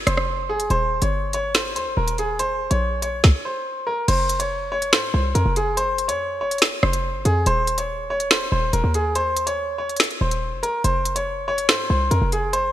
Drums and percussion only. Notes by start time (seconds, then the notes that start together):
0.07 cross-stick, closed hi-hat
0.17 cross-stick
0.60 closed hi-hat
0.70 closed hi-hat
1.02 closed hi-hat
1.33 closed hi-hat
1.54 finger snap, snare, closed hi-hat
1.76 closed hi-hat
2.08 closed hi-hat
2.18 closed hi-hat
2.39 closed hi-hat
2.71 closed hi-hat
3.02 closed hi-hat
3.24 kick, snare
4.08 closed hi-hat, crash
4.29 closed hi-hat
4.40 closed hi-hat
4.82 closed hi-hat
4.93 finger snap, snare
5.35 closed hi-hat
5.56 closed hi-hat
5.77 closed hi-hat
5.98 closed hi-hat
6.09 closed hi-hat
6.51 closed hi-hat
6.58 finger snap, snare, closed hi-hat
6.65 closed hi-hat
6.83 cross-stick
6.93 closed hi-hat
7.25 closed hi-hat
7.46 closed hi-hat
7.67 closed hi-hat
7.78 closed hi-hat
8.20 closed hi-hat
8.31 finger snap, snare
8.73 closed hi-hat
8.94 closed hi-hat
9.15 closed hi-hat
9.37 closed hi-hat
9.47 closed hi-hat
9.89 closed hi-hat
9.96 finger snap, closed hi-hat
10.00 snare, closed hi-hat
10.03 closed hi-hat
10.11 closed hi-hat
10.31 closed hi-hat
10.63 closed hi-hat
10.84 closed hi-hat
11.05 closed hi-hat
11.16 closed hi-hat
11.58 closed hi-hat
11.69 finger snap, snare
12.11 closed hi-hat
12.32 closed hi-hat
12.53 closed hi-hat